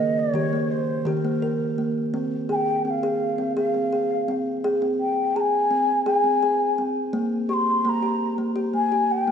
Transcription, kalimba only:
0.00 0.21 D#3 medium
0.00 0.35 A#3 medium
0.34 0.92 D#3 medium
0.34 0.53 G4 medium
0.53 0.88 A#3 medium
1.05 1.92 D#3 medium
1.05 1.24 G4 medium
1.25 1.42 A#3 medium
1.42 1.78 A#4 medium
1.78 2.14 A#3 medium
2.14 2.49 C4 medium
2.49 2.85 G#4 medium
2.85 3.03 C4 medium
3.03 3.39 G#4 medium
3.38 3.56 C4 medium
3.57 3.74 G#4 medium
3.74 3.92 C4 medium
3.93 4.28 G#4 medium
4.28 4.64 C4 medium
4.64 4.82 G#4 medium
4.82 5.17 C4 medium
5.36 5.71 G#4 medium
5.71 6.06 C4 medium
6.06 6.24 G#4 medium
6.24 6.42 C4 medium
6.43 6.78 G#4 medium
6.78 7.14 C4 medium
7.13 7.49 A#3 medium
7.49 7.85 G4 medium
7.85 8.03 A#3 medium
8.03 8.38 G4 medium
8.38 8.56 A#3 medium
8.56 8.74 G4 medium
8.74 8.92 A#3 medium
8.92 9.28 G4 medium
9.27 9.31 A#3 medium

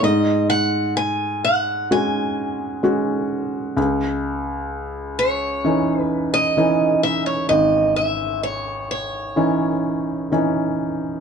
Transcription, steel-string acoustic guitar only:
0.04 0.49 D#5 medium
0.50 0.96 F#5 medium
0.97 1.44 G#5 medium
1.45 1.88 F#5 medium
1.92 3.27 G#5 medium
5.19 6.01 C#5 medium
6.01 6.33 B4 medium
6.34 7.03 D#5 medium
7.03 7.26 E5 medium
7.26 7.48 C#5 medium
7.49 7.96 D#5 medium
7.96 8.43 E5 medium
8.43 8.90 C#5 medium
8.91 10.76 C#5 medium

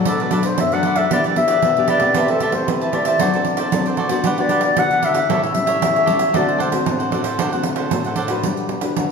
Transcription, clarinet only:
0.08 0.23 A4 medium
0.22 0.47 B4 medium
0.46 0.62 C5 loud
0.60 0.75 E5 medium
0.73 0.98 F#5 loud
0.97 1.10 E5 medium
1.13 1.24 D5 loud
1.38 1.91 E5 loud
1.90 2.16 D5 loud
2.17 2.32 B4 medium
2.30 2.55 A4 medium
2.54 2.71 C5 medium
2.69 2.96 B4 medium
2.94 3.99 D5 medium
4.26 4.42 B4 medium
4.40 4.63 D5 medium
4.64 4.80 D5 loud
4.79 5.06 F#5 loud
5.05 5.30 E5 medium
5.32 6.38 E5 loud
6.37 6.61 D5 medium
6.61 7.36 C5 medium

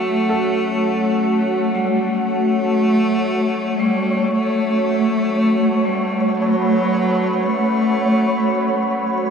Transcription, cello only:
0.00 1.76 A3 loud
1.75 2.23 G3 medium
2.24 3.81 A3 loud
3.79 4.33 G3 medium
4.31 5.87 A3 medium
5.85 6.37 G3 medium
6.38 7.44 F#3 loud
7.43 8.97 A3 medium

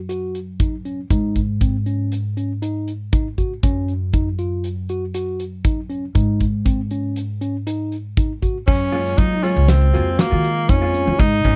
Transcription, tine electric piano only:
0.09 0.38 F#4 medium
0.60 0.74 D#4 soft
0.85 1.00 C#4 medium
1.11 1.40 D#4 medium
1.61 1.76 C4 medium
1.86 2.15 C#4 medium
2.37 2.51 C#4 medium
2.62 2.91 D#4 medium
3.13 3.27 D#4 medium
3.38 3.52 F#4 medium
3.63 3.92 C#4 medium
4.14 4.28 D#4 medium
4.39 4.68 F4 medium
4.90 5.04 F#4 medium
5.14 5.43 F#4 medium
5.65 5.79 D#4 medium
5.90 6.04 C#4 medium
6.15 6.44 D#4 medium
6.65 6.80 C4 medium
6.91 7.20 C#4 medium
7.41 7.56 C#4 medium
7.67 7.96 D#4 medium
8.17 8.32 D#4 medium
8.42 8.57 F#4 medium
8.68 8.96 C#4 medium
9.18 9.32 D#4 medium
9.43 9.72 F4 medium
9.94 10.08 F#4 medium
10.19 10.48 F#4 medium
10.69 10.83 D#4 medium
10.94 11.08 C#4 medium
11.19 11.48 D#4 medium

